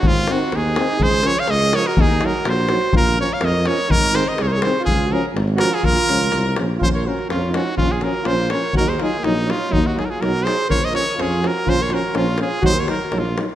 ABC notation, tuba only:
X:1
M:2/4
L:1/8
Q:1/4=124
K:Bbm
V:1 name="Tuba" clef=bass
A,,,2 E,,2 | D,,2 D,,2 | E,,2 B,,,2 | B,,,2 F,,2 |
A,,,2 C,,2 | D,,2 A,,,2 | B,,, D,, C,, B,,, | B,,,2 F,,2 |
B,,,2 B,,,2 | E,,2 B,,,2 | E,,2 _C,,2 | B,,,2 F,,2 |
B,,,2 B,,,2 | E,,2 B,,,2 |]